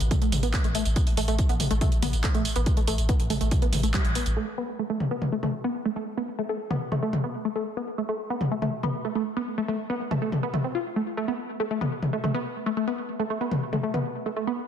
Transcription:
0.00 A1, closed hi-hat, tambourine
0.11 A3, kick, closed hi-hat, mid tom, tambourine
0.22 A3, closed hi-hat, tambourine
0.32 A1, open hi-hat, mid tom, tambourine
0.43 A1 B3, closed hi-hat, tambourine
0.54 kick, clap, open hi-hat, tambourine
0.64 A1 A3, closed hi-hat, tambourine
0.75 A3, open hi-hat, tambourine
0.85 A1, closed hi-hat, tambourine
0.96 B3, kick, closed hi-hat, tambourine
1.07 open hi-hat, tambourine
1.17 A1 A3, open hi-hat, tambourine
1.28 A1 A3, closed hi-hat, tambourine
1.39 kick, closed hi-hat, tambourine
1.49 A1 B3, closed hi-hat, tambourine
1.60 open hi-hat, mid tom, tambourine
1.71 A1 A3, closed hi-hat, tambourine
1.81 A3, kick, closed hi-hat, mid tom, tambourine
1.92 closed hi-hat, tambourine
2.02 A1 B3, open hi-hat, mid tom, tambourine
2.13 A1, closed hi-hat, tambourine
2.24 A3, kick, clap, closed hi-hat, tambourine
2.34 A1 A3, closed hi-hat, tambourine
2.45 open hi-hat, tambourine
2.56 A1 B3, closed hi-hat, tambourine
2.66 kick, closed hi-hat, tambourine
2.77 A3, closed hi-hat, tambourine
2.87 A1 A3, open hi-hat, tambourine
2.98 A1, closed hi-hat, tambourine
3.09 B3, kick, closed hi-hat, tambourine
3.20 A1, closed hi-hat, tambourine
3.30 A3, open hi-hat, mid tom, tambourine
3.41 A1 A3, closed hi-hat, tambourine
3.51 kick, closed hi-hat, mid tom, tambourine
3.62 B3, closed hi-hat, tambourine
3.73 A1, open hi-hat, mid tom, tambourine
3.83 A1 A3, closed hi-hat, tambourine
3.94 G3, kick, clap, open hi-hat, tambourine
4.05 A1, closed hi-hat, tambourine
4.15 B3, open hi-hat, tambourine
4.26 A1, closed hi-hat, tambourine
4.37 A3
4.58 B3
4.79 A3
4.90 A3
5.00 mid tom
5.11 B3
5.22 mid tom
5.32 A3
5.43 A3, mid tom
5.64 B3
5.85 A3
5.96 A3
6.17 B3
6.39 A3
6.49 A3
6.70 B3, mid tom
6.92 A3, mid tom
7.03 A3
7.13 mid tom
7.24 B3
7.45 A3
7.56 A3
7.77 B3
7.98 A3
8.09 A3
8.30 B3
8.41 mid tom
8.51 A3
8.62 A3, mid tom
8.83 B3, mid tom
9.05 A3
9.15 A3
9.37 B3
9.58 A3
9.68 A3
9.90 B3
10.11 A3, mid tom
10.22 A3
10.32 mid tom
10.43 B3
10.54 A3, mid tom
10.64 C4
10.75 F4
10.96 A3
11.17 A3
11.28 B3
11.60 A3
11.71 A3
11.81 B3, mid tom
12.02 mid tom
12.13 A3
12.24 A3, mid tom
12.34 B3
12.66 A3
12.77 A3
12.87 B3
13.19 A3
13.30 A3
13.41 B3
13.51 mid tom
13.73 A3, mid tom
13.83 A3
13.94 B3, mid tom
14.26 A3
14.36 A3
14.47 B3

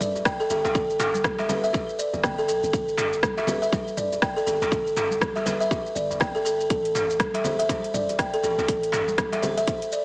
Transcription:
0.00 D1 D5, mid tom, high conga, shaker
0.15 djembe tone, shaker
0.25 G5, kick, cross-stick, shaker
0.40 A4, shaker
0.50 G1 A4, djembe tone, shaker
0.65 B1, djembe slap, shaker
0.75 G1 A4, kick, shaker
0.90 shaker
1.00 mid tom, djembe slap, shaker
1.14 high conga, shaker
1.24 kick, cross-stick, high conga, djembe tone, shaker
1.38 E5, djembe slap, high conga, shaker
1.49 B4, djembe tone, high conga, djembe bass, low conga, shaker
1.64 E5, shaker
1.73 kick, djembe tone, shaker
1.89 shaker
1.99 D5, shaker
2.13 G1, djembe tone, djembe bass, shaker
2.24 G5, kick, cross-stick, low conga, shaker
2.38 A4, shaker
2.48 B1 A4, shaker
2.63 G1, shaker
2.73 G1 A4, kick, shaker
2.88 shaker
2.97 mid tom, djembe slap, shaker
3.13 shaker
3.23 kick, cross-stick, high conga, shaker
3.37 E5, djembe slap, high conga, shaker
3.47 B4, high conga, low conga, djembe bass, shaker
3.62 E5, shaker
3.72 kick, djembe tone, high conga, shaker
3.88 shaker
3.97 D1 D5, mid tom, high conga, shaker
4.12 djembe tone, shaker
4.22 G5, kick, cross-stick, shaker
4.36 A4, shaker
4.46 G1 A4, djembe tone, shaker
4.62 B1, djembe slap, shaker
4.71 G1 A4, kick, shaker
4.87 shaker
4.97 mid tom, djembe slap, shaker
5.11 high conga, shaker
5.21 kick, cross-stick, djembe tone, high conga, shaker
5.36 E5, djembe slap, high conga, shaker
5.46 B4, djembe slap, djembe tone, high conga, djembe bass, low conga, shaker
5.60 E5, shaker
5.71 kick, djembe tone, shaker
5.86 shaker
5.95 G1 D5, shaker
6.11 djembe tone, djembe bass, shaker
6.20 G5, kick, cross-stick, low conga, shaker
6.35 A4, djembe tone, shaker
6.45 A4, shaker
6.60 shaker
6.70 A1 A4, kick, closed hi-hat, shaker
6.85 closed hi-hat, shaker
6.95 mid tom, djembe slap, shaker
7.10 shaker
7.19 kick, cross-stick, closed hi-hat, high conga, shaker
7.34 E5, closed hi-hat, djembe slap, high conga, shaker
7.44 C5, high conga, low conga, djembe bass, shaker
7.59 E5, closed hi-hat, shaker
7.69 C5, kick, closed hi-hat, high conga, djembe tone, shaker
7.84 closed hi-hat, shaker
7.94 E1 D5, mid tom, high conga, shaker
8.09 closed hi-hat, djembe tone, shaker
8.19 G5, kick, cross-stick, closed hi-hat, shaker
8.34 A4, closed hi-hat, shaker
8.43 A1 A4, djembe tone, shaker
8.58 C2, djembe slap, shaker
8.68 A1 A4, kick, closed hi-hat, shaker
8.83 closed hi-hat, shaker
8.92 mid tom, djembe slap, shaker
9.08 high conga, shaker
9.18 kick, cross-stick, closed hi-hat, djembe tone, high conga, shaker
9.32 E5, closed hi-hat, djembe slap, high conga, shaker
9.42 C5, djembe tone, high conga, djembe bass, low conga, shaker
9.57 E5, closed hi-hat, shaker
9.67 C5, kick, closed hi-hat, djembe tone, shaker
9.82 closed hi-hat, shaker
9.92 D5, shaker

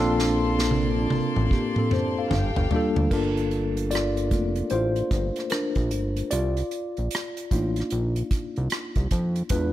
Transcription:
Already playing: A#1 A#3 C4 F4 A4 D5 A5 C6
0.00 D4
0.19 snare
0.59 snare
0.71 high tom
1.10 A1, high tom
1.36 A1, mid tom
1.51 A#3 G4, kick
1.76 C4 A4, mid tom
1.91 C5, mid tom
2.19 A4 F5
2.30 G1 G4 F5 G5, mid tom
2.56 G1, floor tom
2.71 G3 A#3 D4 F4, floor tom
2.76 A4
2.96 D2, floor tom
3.11 G1 A#3 D4 F4 A4 A#4, kick, crash
3.37 closed hi-hat
3.51 closed hi-hat
3.77 closed hi-hat
3.91 F4 D5, closed hi-hat
3.95 cross-stick
4.17 closed hi-hat
4.31 F1 A3 A#3 F4, kick, closed hi-hat
4.56 closed hi-hat
4.70 A1 F4 C5, closed hi-hat
4.96 closed hi-hat
5.11 G1, kick, closed hi-hat
5.36 cross-stick, closed hi-hat
5.50 D4 A#4, cross-stick, closed hi-hat
5.75 A#1, kick, closed hi-hat
5.91 G1, closed hi-hat
6.16 closed hi-hat
6.31 C2 F4 D5, closed hi-hat
6.57 closed hi-hat
6.71 closed hi-hat
6.97 A#1, closed hi-hat
7.11 closed hi-hat
7.15 cross-stick
7.37 closed hi-hat
7.51 A1 A#3 D4 D#4 F4, kick, closed hi-hat
7.76 closed hi-hat
7.80 cross-stick
7.90 A#1, closed hi-hat
8.16 closed hi-hat
8.31 kick, closed hi-hat
8.56 C2, closed hi-hat
8.70 cross-stick, closed hi-hat
8.95 C2, kick, closed hi-hat
9.11 F2, kick, closed hi-hat
9.36 closed hi-hat
9.49 E2 G#3 D4 F4 B4, kick, closed hi-hat

